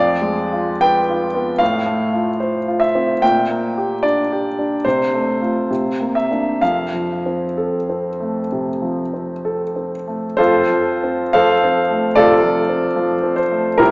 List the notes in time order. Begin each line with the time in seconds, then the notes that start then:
Already playing: F2 D5
0.21 G#3
0.53 F4
0.81 B4 G5
1.09 F4
1.34 B3
1.58 A2 F5
1.86 A3
2.13 F4
2.40 C5
2.68 F4
2.80 E5
2.95 C4
3.22 A#2 G5
3.50 A#3
3.77 G4
4.03 D4 D5
4.32 G4
4.59 D4
4.85 C3 C5
5.13 A3
5.42 A3 F4
5.71 C3
6.00 A#3
6.15 E5
6.31 A#3 D4
6.61 F2 F5
6.93 F3
7.26 C4
7.57 A4
7.89 C4
8.20 A3
8.52 C3
8.82 F3
9.14 C4
9.45 A4
9.76 C4
10.07 A3
10.37 F2 F4 A4 C5
10.70 F3
11.04 C4
11.33 F3 A4 C5 F5
11.64 C4
11.90 A3
12.15 C3 F4 A4 D5
12.43 F3
12.69 C4
12.96 F3
13.23 C4
13.36 C5
13.51 A3
13.78 C2 E4 G4 A#4